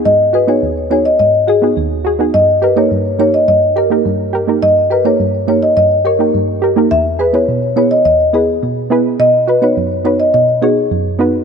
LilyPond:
<<
  \new Staff \with { instrumentName = "Marimba" } { \time 4/4 \key dis \phrygian \tempo 4 = 105 dis''16 r16 b'16 cis''16 r8 cis''16 dis''16 dis''16 r16 gis'16 r4 r16 | dis''16 r16 b'16 cis''16 r8 cis''16 dis''16 dis''16 r16 ais'16 r4 r16 | dis''16 r16 b'16 cis''16 r8 cis''16 dis''16 dis''16 r16 ais'16 r4 r16 | e''16 r16 b'16 cis''16 r8 cis''16 dis''16 dis''16 r16 gis'16 r4 r16 |
dis''16 r16 b'16 cis''16 r8 cis''16 dis''16 dis''16 r16 gis'16 r4 r16 | }
  \new Staff \with { instrumentName = "Synth pluck" } { \time 4/4 \key dis \phrygian << { r8 <fis' gis'>16 <b dis' fis' gis'>16 r8 <b dis' fis' gis'>16 r8. <fis' gis'>16 <b dis' fis' gis'>16 r8 <fis' gis'>16 <b dis' fis' gis'>16 | r8 <g' ais'>16 <ais dis' g' ais'>16 r8 <ais dis' g' ais'>16 r8. <g' ais'>16 <ais dis' g' ais'>16 r8 <g' ais'>16 <ais dis' g' ais'>16 | r8 <g' ais'>16 <ais dis' g' ais'>16 r8 <ais dis' g' ais'>16 r8. <g' cis''>16 <ais dis' g' ais'>16 r8 <g' ais'>16 <ais dis' g' ais'>16 | r8 <gis' b'>16 <b e' gis' b'>16 r8 <b e' gis' b'>16 r8. <b e' gis' b'>16 r8. <b e' gis' b'>16 r16 |
r8 <fis' b'>16 <b dis' fis' b'>16 r8 <b dis' fis' b'>16 r8. <b dis' fis' cis''>16 r8. <b dis' fis' b'>16 r16 | } \\ { gis,4 dis,4 gis,4 dis,4 | g,4 g,4 g,4 g,4 | g,4 g,4 g,4 g,4 | e,4 b,4 e,4 b,4 |
b,4 fis,4 b,4 fis,4 | } >> }
>>